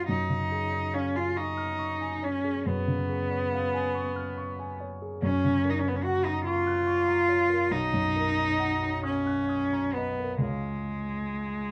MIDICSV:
0, 0, Header, 1, 3, 480
1, 0, Start_track
1, 0, Tempo, 859599
1, 42, Time_signature, 12, 3, 24, 8
1, 2442, Tempo, 833333
1, 4362, Tempo, 892857
1, 5322, Tempo, 917431
1, 6484, End_track
2, 0, Start_track
2, 0, Title_t, "Grand piano"
2, 0, Program_c, 0, 0
2, 0, Control_c, 0, 64, 127
2, 0, Note_on_c, 0, 85, 43
2, 47, Note_on_c, 0, 42, 49
2, 50, Control_c, 0, 64, 0
2, 56, Note_off_c, 0, 85, 0
2, 148, Control_c, 0, 64, 127
2, 163, Note_on_c, 0, 49, 35
2, 288, Note_on_c, 0, 68, 37
2, 357, Note_off_c, 0, 49, 0
2, 406, Note_on_c, 0, 73, 38
2, 480, Note_off_c, 0, 68, 0
2, 520, Note_on_c, 0, 77, 44
2, 599, Note_off_c, 0, 73, 0
2, 638, Note_on_c, 0, 80, 42
2, 716, Note_off_c, 0, 77, 0
2, 759, Note_on_c, 0, 85, 44
2, 835, Note_off_c, 0, 80, 0
2, 878, Note_on_c, 0, 89, 45
2, 956, Note_off_c, 0, 85, 0
2, 999, Note_on_c, 0, 85, 46
2, 1077, Note_off_c, 0, 89, 0
2, 1121, Note_on_c, 0, 80, 40
2, 1197, Note_off_c, 0, 85, 0
2, 1242, Note_on_c, 0, 73, 42
2, 1318, Note_off_c, 0, 80, 0
2, 1364, Note_on_c, 0, 68, 42
2, 1438, Note_off_c, 0, 73, 0
2, 1470, Note_off_c, 0, 42, 0
2, 1484, Note_on_c, 0, 42, 47
2, 1559, Note_off_c, 0, 68, 0
2, 1605, Note_on_c, 0, 49, 40
2, 1726, Note_on_c, 0, 68, 41
2, 1799, Note_off_c, 0, 49, 0
2, 1847, Note_on_c, 0, 73, 44
2, 1918, Note_off_c, 0, 68, 0
2, 1968, Note_on_c, 0, 77, 44
2, 2037, Note_off_c, 0, 73, 0
2, 2086, Note_on_c, 0, 80, 47
2, 2156, Note_off_c, 0, 77, 0
2, 2203, Note_on_c, 0, 85, 49
2, 2275, Note_off_c, 0, 80, 0
2, 2323, Note_on_c, 0, 89, 46
2, 2394, Note_off_c, 0, 85, 0
2, 2444, Note_on_c, 0, 85, 48
2, 2516, Note_off_c, 0, 89, 0
2, 2568, Note_on_c, 0, 80, 44
2, 2639, Note_off_c, 0, 85, 0
2, 2689, Note_on_c, 0, 73, 44
2, 2761, Note_off_c, 0, 80, 0
2, 2814, Note_on_c, 0, 68, 44
2, 2881, Note_off_c, 0, 73, 0
2, 2902, Note_off_c, 0, 42, 0
2, 2931, Note_off_c, 0, 68, 0
2, 2932, Note_on_c, 0, 42, 57
2, 2937, Control_c, 0, 64, 0
2, 3032, Control_c, 0, 64, 127
2, 3057, Note_on_c, 0, 49, 40
2, 3176, Note_on_c, 0, 70, 43
2, 3241, Note_off_c, 0, 49, 0
2, 3297, Note_on_c, 0, 73, 45
2, 3358, Note_off_c, 0, 70, 0
2, 3414, Note_on_c, 0, 78, 49
2, 3478, Note_off_c, 0, 73, 0
2, 3532, Note_on_c, 0, 82, 45
2, 3595, Note_off_c, 0, 78, 0
2, 3648, Note_on_c, 0, 85, 52
2, 3714, Note_off_c, 0, 82, 0
2, 3765, Note_on_c, 0, 90, 51
2, 3831, Note_off_c, 0, 85, 0
2, 3881, Note_on_c, 0, 85, 53
2, 3950, Note_off_c, 0, 90, 0
2, 4002, Note_on_c, 0, 82, 46
2, 4070, Note_off_c, 0, 85, 0
2, 4119, Note_on_c, 0, 73, 46
2, 4193, Note_off_c, 0, 82, 0
2, 4239, Note_on_c, 0, 70, 42
2, 4315, Note_off_c, 0, 73, 0
2, 4342, Note_off_c, 0, 42, 0
2, 4360, Note_on_c, 0, 35, 57
2, 4363, Note_off_c, 0, 70, 0
2, 4373, Control_c, 0, 64, 0
2, 4473, Control_c, 0, 64, 127
2, 4482, Note_on_c, 0, 42, 44
2, 4606, Note_on_c, 0, 70, 43
2, 4673, Note_off_c, 0, 42, 0
2, 4727, Note_on_c, 0, 75, 43
2, 4796, Note_off_c, 0, 70, 0
2, 4840, Note_on_c, 0, 78, 42
2, 4917, Note_off_c, 0, 75, 0
2, 4964, Note_on_c, 0, 82, 44
2, 5034, Note_off_c, 0, 78, 0
2, 5076, Note_on_c, 0, 87, 47
2, 5155, Note_off_c, 0, 82, 0
2, 5201, Note_on_c, 0, 90, 44
2, 5272, Note_off_c, 0, 87, 0
2, 5322, Note_on_c, 0, 87, 45
2, 5393, Note_off_c, 0, 90, 0
2, 5447, Note_on_c, 0, 82, 43
2, 5513, Note_off_c, 0, 87, 0
2, 5573, Note_on_c, 0, 75, 40
2, 5635, Note_off_c, 0, 82, 0
2, 5689, Note_on_c, 0, 70, 39
2, 5758, Note_off_c, 0, 75, 0
2, 5777, Note_off_c, 0, 35, 0
2, 5786, Note_on_c, 0, 37, 48
2, 5795, Note_on_c, 0, 68, 34
2, 5801, Note_on_c, 0, 73, 35
2, 5804, Note_off_c, 0, 70, 0
2, 5807, Control_c, 0, 64, 0
2, 5807, Note_on_c, 0, 77, 36
2, 5893, Control_c, 0, 64, 127
2, 6484, Note_off_c, 0, 37, 0
2, 6484, Note_off_c, 0, 68, 0
2, 6484, Note_off_c, 0, 73, 0
2, 6484, Note_off_c, 0, 77, 0
2, 6484, End_track
3, 0, Start_track
3, 0, Title_t, "Cello"
3, 0, Program_c, 1, 42
3, 46, Note_on_c, 1, 63, 75
3, 523, Note_on_c, 1, 61, 74
3, 531, Note_off_c, 1, 63, 0
3, 648, Note_on_c, 1, 65, 72
3, 656, Note_off_c, 1, 61, 0
3, 765, Note_on_c, 1, 63, 82
3, 773, Note_off_c, 1, 65, 0
3, 1250, Note_on_c, 1, 61, 77
3, 1259, Note_off_c, 1, 63, 0
3, 1497, Note_on_c, 1, 59, 84
3, 1505, Note_off_c, 1, 61, 0
3, 2690, Note_off_c, 1, 59, 0
3, 2934, Note_on_c, 1, 61, 89
3, 3206, Note_on_c, 1, 63, 70
3, 3214, Note_off_c, 1, 61, 0
3, 3258, Note_on_c, 1, 61, 74
3, 3266, Note_off_c, 1, 63, 0
3, 3308, Note_on_c, 1, 59, 69
3, 3317, Note_off_c, 1, 61, 0
3, 3353, Note_on_c, 1, 61, 71
3, 3361, Note_off_c, 1, 59, 0
3, 3399, Note_on_c, 1, 66, 87
3, 3408, Note_off_c, 1, 61, 0
3, 3522, Note_on_c, 1, 63, 80
3, 3530, Note_off_c, 1, 66, 0
3, 3634, Note_off_c, 1, 63, 0
3, 3637, Note_on_c, 1, 65, 98
3, 4364, Note_on_c, 1, 63, 98
3, 4372, Note_off_c, 1, 65, 0
3, 5080, Note_off_c, 1, 63, 0
3, 5083, Note_on_c, 1, 61, 82
3, 5557, Note_on_c, 1, 59, 71
3, 5564, Note_off_c, 1, 61, 0
3, 5796, Note_off_c, 1, 59, 0
3, 5799, Note_on_c, 1, 56, 76
3, 6484, Note_off_c, 1, 56, 0
3, 6484, End_track
0, 0, End_of_file